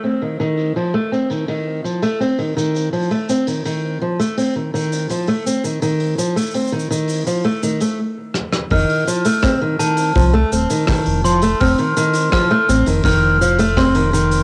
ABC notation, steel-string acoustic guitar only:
X:1
M:4/4
L:1/16
Q:1/4=83
K:Fmix
V:1 name="Steel-string acoustic guitar" clef=bass
C E, E,2 F, A, C E, E,2 F, A, C E, E,2 | F, A, C E, E,2 F, A, C E, E,2 F, A, C E, | E,2 F, A, C E, E,2 F, A, E, A, z4 | E,2 F, A, C E, E,2 F, A, C E, E,2 F, A, |
C E, E,2 F, A, C E, E,2 F, A, C E, E,2 |]